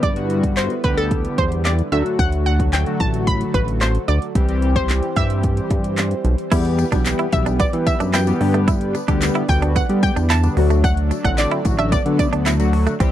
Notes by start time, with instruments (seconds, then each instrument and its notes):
Already playing: supersaw synth D3 G3 B3 E4 B4, analog polysynth G4
0.03 analog synth bass G2, synth pluck D5, kick, closed hi-hat
0.16 analog polysynth D3 G3 B3 F#4, closed hi-hat
0.30 closed hi-hat
0.43 kick, closed hi-hat
0.57 synth pluck C5, clap, closed hi-hat
0.70 closed hi-hat
0.84 analog synth bass D2, analog polysynth D3 G3 B3 G4, synth pluck B4, kick, closed hi-hat
0.97 synth pluck A4, closed hi-hat
1.11 kick, closed hi-hat
1.25 closed hi-hat
1.38 analog synth bass E2, synth pluck C5, kick, closed hi-hat
1.52 closed hi-hat
1.65 synth pluck D5, clap, closed hi-hat
1.79 closed hi-hat
1.92 analog synth bass D2, analog polysynth D3 F#3 A3 F#4, supersaw synth F#3 A3 F#4 A4, synth pluck E5, closed hi-hat
2.06 closed hi-hat
2.19 analog synth bass D2, synth pluck F#5, kick, closed hi-hat
2.32 closed hi-hat
2.46 synth pluck F#5, closed hi-hat
2.59 analog polysynth D3 F#3 A3 F#4, kick, closed hi-hat
2.73 synth pluck G5, clap, closed hi-hat
2.86 analog polysynth D3 F#3 A3 F#4, closed hi-hat
3.00 analog synth bass A1, synth pluck A5, kick, closed hi-hat
3.14 closed hi-hat
3.27 synth pluck B5, kick, closed hi-hat
3.41 closed hi-hat
3.54 analog synth bass A1, synth pluck B4, kick, closed hi-hat
3.68 closed hi-hat
3.81 synth pluck C5, clap, closed hi-hat
3.95 closed hi-hat
4.08 analog synth bass D2, synth pluck D5, closed hi-hat
4.22 closed hi-hat
4.35 analog synth bass C2, analog polysynth E3 G3 C4 G4, supersaw synth C4 C5, kick, closed hi-hat
4.49 analog polysynth E3 G3 C4 G4, closed hi-hat
4.62 closed hi-hat
4.76 synth pluck C5, kick, closed hi-hat
4.89 clap, closed hi-hat
5.03 closed hi-hat
5.16 analog synth bass G2, analog polysynth E3 G3 C4 G4, synth pluck E5, kick, closed hi-hat
5.30 closed hi-hat
5.43 kick, closed hi-hat
5.57 closed hi-hat
5.70 analog synth bass G2, kick, closed hi-hat
5.84 closed hi-hat
5.97 clap, closed hi-hat
6.11 closed hi-hat
6.25 analog synth bass B1, closed hi-hat
6.38 closed hi-hat
6.51 analog synth bass E2, analog polysynth E3 G3 B3 G4, supersaw synth E3 B3 B4, clean electric guitar E4, kick, closed hi-hat, crash, tambourine
6.65 closed hi-hat
6.79 muted clean electric guitar stroke, closed hi-hat, tambourine
6.92 analog synth bass B1, analog polysynth E3 G3 B3 G4, clean electric guitar D4, kick, closed hi-hat, tambourine
7.06 clap, closed hi-hat, tambourine
7.19 clean electric guitar E4, closed hi-hat
7.32 analog synth bass B1, analog polysynth E3 G3 B3 G4, synth pluck E5, muted clean electric guitar stroke, kick, closed hi-hat, tambourine
7.46 clean electric guitar D4, closed hi-hat, tambourine
7.60 clean electric guitar B3, synth pluck D5, kick, closed hi-hat, tambourine
7.73 analog polysynth E3 G3 B3 G4, analog synth bass E3, closed hi-hat
7.87 synth pluck E5, muted clean electric guitar stroke, kick, closed hi-hat, tambourine
8.00 analog synth bass F#2, clean electric guitar D4, closed hi-hat, tambourine
8.14 clean electric guitar E4, synth pluck G5, clap, closed hi-hat, tambourine
8.27 analog polysynth E3 G3 B3 G4, closed hi-hat, tambourine
8.40 analog synth bass G2, analog polysynth D3 G3 B3 G4, supersaw synth B3 D4 D5, muted clean electric guitar stroke, open hi-hat
8.54 clean electric guitar A3, closed hi-hat
8.68 clean electric guitar E4, kick, closed hi-hat, tambourine
8.81 closed hi-hat
8.95 muted clean electric guitar stroke, closed hi-hat, tambourine
9.08 analog synth bass D2, analog polysynth D3 G3 B3 G4, clean electric guitar D4, kick, closed hi-hat, tambourine
9.22 clap, closed hi-hat, tambourine
9.35 clean electric guitar E4, closed hi-hat
9.48 analog synth bass D2, analog polysynth D3 G3 B3 F#4, synth pluck G5, muted clean electric guitar stroke, kick, closed hi-hat, tambourine
9.62 clean electric guitar D4, closed hi-hat
9.76 clean electric guitar B3, synth pluck F#5, kick, closed hi-hat, tambourine
9.89 analog polysynth D3 G3 B3 G4, analog synth bass G3, closed hi-hat
10.03 synth pluck G5, muted clean electric guitar stroke, kick, closed hi-hat, tambourine
10.16 analog synth bass E2, clean electric guitar D4, closed hi-hat, tambourine
10.30 clean electric guitar E4, synth pluck A5, clap, closed hi-hat, tambourine
10.43 analog polysynth D3 G3 B3 D4, closed hi-hat, tambourine
10.57 analog synth bass D2, analog polysynth D3 F#3 A3 F#4, supersaw synth F#3 A3 A4 D5, muted clean electric guitar stroke, open hi-hat
10.70 clean electric guitar A3, closed hi-hat, tambourine
10.84 clean electric guitar D4, synth pluck F#5, kick, closed hi-hat, tambourine
10.97 closed hi-hat
11.11 muted clean electric guitar stroke, closed hi-hat, tambourine
11.24 analog synth bass A1, analog polysynth D3 F#3 A3 C4, clean electric guitar D4, synth pluck F#5, kick, closed hi-hat
11.38 synth pluck D5, clap, closed hi-hat, tambourine
11.51 clean electric guitar E4, closed hi-hat
11.65 analog synth bass A1, analog polysynth D3 F#3 A3 F#4, muted clean electric guitar stroke, kick, closed hi-hat, tambourine
11.79 clean electric guitar D4, synth pluck E5, closed hi-hat
11.92 clean electric guitar B3, synth pluck D5, kick, closed hi-hat, tambourine
12.05 analog polysynth D3 F#3 A3 B3, analog synth bass D3, closed hi-hat
12.19 synth pluck D5, muted clean electric guitar stroke, kick, closed hi-hat, tambourine
12.33 analog synth bass D2, clean electric guitar D4, closed hi-hat
12.46 clean electric guitar E4, clap, closed hi-hat, tambourine
12.59 analog polysynth D3 F#3 A3 F#4, closed hi-hat, tambourine
12.73 muted clean electric guitar stroke, open hi-hat
12.87 clean electric guitar A3, closed hi-hat, tambourine
13.00 analog synth bass C2, analog polysynth E3 G3 C4 G4, supersaw synth G3 C4 E4 C5, clean electric guitar C4, kick, closed hi-hat, tambourine